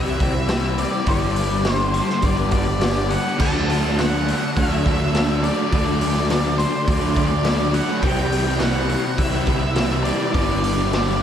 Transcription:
Already playing: fingered electric bass C2, overdriven electric guitar C3 E3 G3 C4 G4, ambient pad E4 C5 B5, lead electric guitar E5
0.19 overdriven electric guitar E3 G3 C4 G4, kick, open hi-hat
0.34 muted overdriven electric guitar stroke
0.47 overdriven electric guitar C3 E3 G3 C4 G4, snare, open hi-hat
0.77 overdriven electric guitar E3 G3 C4 G4, lead electric guitar D5, open hi-hat
0.92 overdriven electric guitar G3 C4 G4
1.06 fingered electric bass G1, overdriven electric guitar G2 D3 G3 B3 D4 G4, ambient pad G4 F#5, lead electric guitar D5, kick, open hi-hat
1.36 open hi-hat
1.49 overdriven electric guitar B3 D4 G4
1.53 overdriven electric guitar G3
1.63 overdriven electric guitar G2 D3 G3 B3 D4, snare, open hi-hat
1.67 overdriven electric guitar G4
1.73 lead electric guitar C5
1.94 overdriven electric guitar G2 D3 G3 B3 D4, lead electric guitar C5, open hi-hat
1.98 overdriven electric guitar G4
2.08 muted overdriven electric guitar stroke, snare
2.22 fingered electric bass G1, overdriven electric guitar G3 B3 D4 G4, lead electric guitar D5, kick, open hi-hat
2.51 overdriven electric guitar G3 B3 D4 G4, lead electric guitar D5, kick, open hi-hat
2.67 muted overdriven electric guitar stroke
2.79 overdriven electric guitar G2 D3 G3 B3 D4, snare, open hi-hat
2.83 overdriven electric guitar G4
3.10 overdriven electric guitar G3 B3 D4 G4, lead electric guitar F#5, open hi-hat
3.24 overdriven electric guitar G3 B3 D4 G4
3.38 fingered electric bass D2, overdriven electric guitar D3 F#3 A3 D4, ambient pad F#4 D5 A5, lead electric guitar A5, kick, crash
3.43 overdriven electric guitar F#4
3.68 overdriven electric guitar D3 F#3 A3 D4, open hi-hat
3.83 overdriven electric guitar A3 D4 F#4
3.97 overdriven electric guitar D3 F#3 A3 D4 F#4, lead electric guitar F#5, snare, open hi-hat
4.12 overdriven electric guitar F#3 A3 D4
4.26 overdriven electric guitar D3 F#3 A3 D4, muted overdriven electric guitar stroke, open hi-hat
4.30 overdriven electric guitar F#4
4.42 muted overdriven electric guitar stroke
4.56 fingered electric bass D2, overdriven electric guitar F#3 A3 D4, lead electric guitar E5, kick, open hi-hat
4.60 overdriven electric guitar F#4
4.70 overdriven electric guitar F#3 A3 D4
4.84 overdriven electric guitar D3 F#3 A3 D4, kick, open hi-hat
4.89 overdriven electric guitar F#4
5.00 muted overdriven electric guitar stroke
5.13 overdriven electric guitar D3 F#3 A3 D4, snare, open hi-hat
5.18 overdriven electric guitar F#4
5.29 overdriven electric guitar F#3 A3 D4
5.42 overdriven electric guitar D3 F#3 A3 D4 F#4, lead electric guitar D5, open hi-hat
5.57 overdriven electric guitar F#3 D4 F#4
5.62 overdriven electric guitar A3
5.71 fingered electric bass D2, overdriven electric guitar D3 F#3 A3 D4 F#4, lead electric guitar D5, ambient pad B5, kick, open hi-hat
6.01 overdriven electric guitar D3 F#3 A3 D4, open hi-hat
6.15 overdriven electric guitar A3 D4 F#4
6.29 overdriven electric guitar D3 F#3 A3 D4 F#4, snare, open hi-hat
6.44 overdriven electric guitar F#3 A3 D4
6.58 overdriven electric guitar D3 F#3 A3 D4 F#4, lead electric guitar C5, muted overdriven electric guitar stroke, open hi-hat
6.74 muted overdriven electric guitar stroke
6.87 fingered electric bass D2, overdriven electric guitar F#3 A3 D4 F#4, lead electric guitar D5, kick, open hi-hat
7.01 overdriven electric guitar F#3 A3 D4
7.15 overdriven electric guitar D3 F#3 A3 D4, lead electric guitar D5, kick, open hi-hat
7.19 overdriven electric guitar F#4
7.32 muted overdriven electric guitar stroke
7.43 overdriven electric guitar D3 F#3 A3 D4 F#4, snare, open hi-hat
7.59 overdriven electric guitar F#3 A3 D4
7.73 overdriven electric guitar D3 F#3 A3 D4, lead electric guitar F#5, open hi-hat
7.77 overdriven electric guitar F#4
7.88 overdriven electric guitar F#3 A3 D4 F#4
8.01 fingered electric bass C2, overdriven electric guitar C3 E3 G3 C4 E4, ambient pad C5, lead electric guitar G5, kick, open hi-hat
8.06 ambient pad E4, overdriven electric guitar G4
8.31 overdriven electric guitar C3 G3 C4 E4, open hi-hat
8.45 overdriven electric guitar G3 E4 G4
8.60 overdriven electric guitar C3 E3 G3 C4 E4 G4, lead electric guitar F#5, snare, open hi-hat
8.73 overdriven electric guitar G3 C4 E4
8.88 overdriven electric guitar C3 E3 G3 C4 E4, muted overdriven electric guitar stroke, open hi-hat
8.93 overdriven electric guitar G4
9.05 muted overdriven electric guitar stroke
9.17 fingered electric bass C2, overdriven electric guitar E3 G3 E4 G4, lead electric guitar E5, kick, open hi-hat
9.31 overdriven electric guitar G3 C4 E4
9.46 overdriven electric guitar C3 E3 G3 C4 E4 G4, kick, open hi-hat
9.63 muted overdriven electric guitar stroke
9.74 overdriven electric guitar C3 E3 G3 C4 E4 G4, snare, open hi-hat
9.89 overdriven electric guitar G3 C4 E4
10.04 overdriven electric guitar C3 E3 G3 C4 E4, lead electric guitar D5, open hi-hat
10.09 overdriven electric guitar G4
10.19 overdriven electric guitar G3 C4 E4 G4
10.33 fingered electric bass G1, overdriven electric guitar G2 D3 G3 B3 D4 G4, ambient pad G4 G5, lead electric guitar D5, kick, open hi-hat
10.62 overdriven electric guitar D3 G3 B3 D4, open hi-hat
10.77 overdriven electric guitar G3 B3 D4 G4
10.91 overdriven electric guitar G2 D3 G3 B3 D4 G4, snare, open hi-hat
11.05 overdriven electric guitar G3 B3 D4

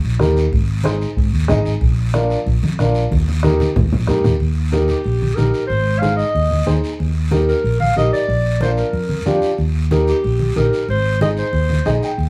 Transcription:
0.04 fretless electric bass A#1
0.19 fretless electric bass D#2, upright piano D#4 G4 A#4, bombo rim, high conga, short guiro
0.36 short guiro
0.52 fretless electric bass G#1, bombo low, high conga, long guiro
0.84 upright piano D#4 G#4 C5, bombo rim, high conga, short guiro
1.01 short guiro
1.17 fretless electric bass G#1, bombo low, high conga, long guiro
1.33 fretless electric bass D#2
1.48 fretless electric bass G#1, upright piano D#4 G#4 D#5, bombo rim, high conga, low conga, short guiro
1.66 short guiro
1.81 fretless electric bass A#1, bombo low, high conga, long guiro
2.14 upright piano D4 F4 A#4, bombo rim, high conga, short guiro
2.30 short guiro
2.46 fretless electric bass A#1, bombo low, high conga, long guiro
2.63 fretless electric bass F2, high conga
2.79 fretless electric bass A#1, upright piano D4 F4 A#4, bombo rim, high conga, short guiro
2.94 short guiro
3.11 fretless electric bass D#2, bombo low, high conga, long guiro
3.28 high conga
3.43 upright piano D#4 G4 A#4, bombo rim, high conga, short guiro
3.60 high conga, short guiro
3.76 fretless electric bass D#2, bombo low, low conga, long guiro
3.92 fretless electric bass A#1, low conga
4.07 fretless electric bass F2, upright piano D#4 G4 A#4, bombo rim, low conga, short guiro
4.24 fretless electric bass D#2, low conga, short guiro
4.40 fretless electric bass D#2, high conga, long guiro
4.72 upright piano D#4 G4 A#4, high conga, short guiro
4.88 clarinet G4, high conga, short guiro
5.04 fretless electric bass A#1, high conga, long guiro
5.22 high conga
5.35 fretless electric bass A#1, upright piano D#4 G4 A#4, clarinet A#4, high conga, short guiro
5.54 short guiro
5.67 fretless electric bass G#1, clarinet C5, long guiro
5.99 upright piano D#4 G#4 C5, clarinet F5
6.03 high conga, short guiro
6.16 clarinet D#5, short guiro
6.35 fretless electric bass D#2, high conga, long guiro
6.51 high conga
6.66 fretless electric bass D#2, upright piano D#4 G#4 C5, high conga, short guiro
6.84 short guiro
7.00 fretless electric bass D#2, high conga, long guiro
7.31 upright piano D#4 G4 A#4, high conga, short guiro
7.49 clarinet A#4, short guiro
7.64 fretless electric bass A#1, high conga, long guiro
7.80 clarinet F5, high conga
7.96 fretless electric bass A#1, upright piano D#4 G4 A#4, clarinet D#5, high conga, short guiro
8.13 clarinet D5, short guiro
8.28 fretless electric bass A#1, high conga, long guiro
8.61 upright piano D4 F4 A#4, clarinet C5, high conga, short guiro
8.77 clarinet A#4, short guiro
8.93 fretless electric bass F2, high conga, long guiro
9.09 high conga
9.25 fretless electric bass F2, upright piano D4 F4 G4, high conga, short guiro
9.42 short guiro
9.58 fretless electric bass D#2, high conga, long guiro
9.91 upright piano D#4 G4 A#4, high conga, short guiro
10.07 clarinet G4, short guiro
10.24 fretless electric bass A#1, high conga, long guiro
10.39 high conga
10.56 fretless electric bass A#1, upright piano D#4 G4 A#4, clarinet A#4, high conga, short guiro
10.73 short guiro
10.88 fretless electric bass G#1, clarinet C5, high conga, long guiro
11.21 upright piano D#4 G#4 C5, clarinet D#5, high conga, short guiro
11.37 clarinet C5, short guiro
11.53 fretless electric bass D#2, high conga, long guiro
11.70 high conga
11.86 fretless electric bass A#1, upright piano D#4 G#4 D#5, high conga, short guiro
12.02 upright piano G5, short guiro
12.18 fretless electric bass D#2, high conga, long guiro

